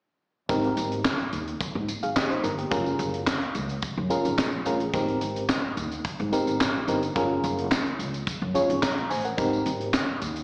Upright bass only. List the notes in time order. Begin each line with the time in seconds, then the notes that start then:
0.49 G#1
0.77 G#1
1.33 D#2
1.61 muted upright bass stroke
1.75 G#2
2.03 G#1
2.16 A#1
2.44 G1
2.72 F#1
2.99 F#1
3.55 C#2
3.97 F#2
4.25 G#1
4.38 A#1
4.66 A1
4.94 G#1
5.21 G#1
5.77 D#2
6.05 muted upright bass stroke
6.20 G#2
6.48 G#1
6.60 A#1
6.88 G1
7.16 F#1
7.44 F#1
7.99 C#2
8.27 muted upright bass stroke
8.42 F#2
8.70 G#1
8.83 A#1
9.11 A1
9.38 G#1
9.66 G#1
10.22 D#2